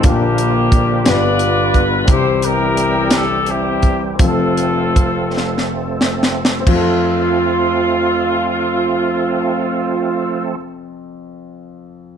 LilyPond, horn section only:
\new Staff \with { instrumentName = "Horn section" } { \time 6/8 \key f \major \tempo 4. = 49 << { g'4. d''4 r8 | c''8 bes'4 a'8 g'4 | a'2 r4 | f'2.~ |
f'2. | } \\ { <bes d'>4. <f' b'>4. | <e' g'>8 <e' g'>4. <c' e'>4 | <c' f'>2 r4 | r2. |
r2. | } >> }